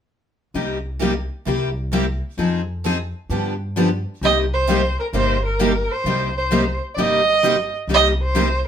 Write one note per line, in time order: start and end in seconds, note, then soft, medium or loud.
0.54 1.28 C2 medium
0.54 0.76 C3 medium
0.54 0.77 G3 soft
0.54 0.77 A#3 soft
0.54 0.77 D#4 medium
0.54 0.77 G4 medium
1.01 1.12 C3 medium
1.01 1.13 G3 medium
1.01 1.13 A#3 medium
1.01 1.13 D#4 medium
1.01 1.13 G4 medium
1.46 2.20 C2 medium
1.46 1.68 C3 medium
1.46 1.69 G3 medium
1.46 1.69 A#3 medium
1.46 1.69 E4 medium
1.46 1.69 G4 medium
1.93 2.04 C3 medium
1.93 2.04 G3 medium
1.93 2.04 A#3 medium
1.93 2.04 E4 medium
1.93 2.05 G4 medium
2.37 3.11 F2 medium
2.37 2.60 F3 soft
2.37 2.61 C4 medium
2.37 2.61 D#4 medium
2.37 2.61 G#4 soft
2.85 2.96 F3 medium
2.85 2.96 C4 medium
2.85 2.97 D#4 medium
2.85 2.97 G#4 medium
3.29 4.03 G2 medium
3.29 3.53 D3 medium
3.29 3.53 F3 medium
3.29 3.53 B3 medium
3.29 3.53 D4 medium
3.29 3.53 G4 medium
3.76 3.88 D3 medium
3.76 3.88 F3 medium
3.76 3.88 B3 medium
3.76 3.88 D4 medium
3.76 3.88 G4 medium
4.21 4.95 C2 medium
4.21 4.44 C3 medium
4.21 4.44 G3 medium
4.21 4.44 A#3 medium
4.21 4.45 D#4 medium
4.21 4.45 G4 medium
4.21 4.37 D#5 loud
4.53 4.95 C5 medium
4.69 4.80 C3 medium
4.69 4.80 G3 medium
4.69 4.80 A#3 medium
4.69 4.81 D#4 medium
4.69 4.81 G4 medium
5.00 5.06 A#4 medium
5.13 5.87 G1 medium
5.13 5.36 C3 medium
5.13 5.36 G3 medium
5.13 5.36 A#3 medium
5.13 5.36 D#4 medium
5.13 5.37 G4 medium
5.13 5.42 C5 medium
5.45 5.92 A#4 medium
5.59 5.71 C3 medium
5.59 5.71 G3 medium
5.59 5.72 A#3 medium
5.59 5.71 D#4 medium
5.59 5.72 G4 medium
5.91 6.36 C5 medium
6.04 6.78 C2 medium
6.04 6.28 C3 medium
6.04 6.28 G3 medium
6.04 6.28 A#3 medium
6.04 6.28 D#4 medium
6.04 6.28 G4 medium
6.38 6.79 C5 medium
6.51 6.63 C3 medium
6.51 6.63 G3 medium
6.51 6.63 A#3 medium
6.51 6.63 D#4 medium
6.51 6.63 G4 medium
6.95 7.70 G1 medium
6.95 7.19 C3 medium
6.95 7.20 G3 medium
6.95 7.20 A#3 medium
6.95 7.20 D#4 medium
6.95 7.01 D5 medium
6.99 7.20 G4 medium
6.99 7.74 D#5 loud
7.43 7.55 C3 medium
7.43 7.55 G3 medium
7.43 7.55 A#3 medium
7.43 7.55 D#4 medium
7.43 7.55 G4 medium
7.88 8.61 C2 medium
7.88 8.11 C3 medium
7.88 8.11 G3 medium
7.88 8.11 A#3 medium
7.88 8.11 D#4 medium
7.88 8.12 G4 medium
7.94 8.06 D#5 loud
8.22 8.63 C5 medium
8.35 8.46 C3 medium
8.35 8.46 G3 medium
8.35 8.47 A#3 medium
8.35 8.47 D#4 medium
8.35 8.47 G4 medium